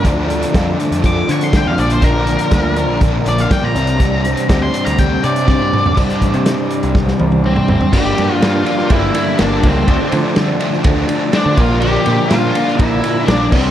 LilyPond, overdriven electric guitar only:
\new Staff \with { instrumentName = "Overdriven electric guitar" } { \time 4/4 \key g \minor \tempo 4 = 122 <d f a d'>8 <f a d'>8 <d f a d'>8 <f a d'>8 <d f a d'>8 <f a d'>8 <d f a d'>8 <bes, d f bes d'>8 | <bes, d f bes d'>8 <f bes d'>8 <d f bes d'>8 <f bes d'>8 <bes, d f bes d'>8 <f bes d'>8 <d f bes d'>8 <c g c' d'>8 | <c g c' d'>8 <g c' d'>8 <c g c' d'>8 <g c' d'>8 <c g c' d'>8 <g c' d'>8 <c g c' d'>4 | <c g c' d'>1 |
<g, d g bes d'>8 <g bes d'>8 <d g bes d'>8 <g bes d'>8 <g, d g bes d'>8 <g bes d'>8 <d g bes d'>4 | <d f a d'>8 <f a d'>8 <d f a d'>8 <f a d'>8 <d f a d'>8 <f a d'>8 <d f a d'>8 <bes, d f bes d'>8 | <bes, d f bes d'>8 <f bes d'>8 <d f bes d'>8 <f bes d'>8 <bes, d f bes d'>8 <f bes d'>8 <d f bes d'>8 <c g c' d'>8 | }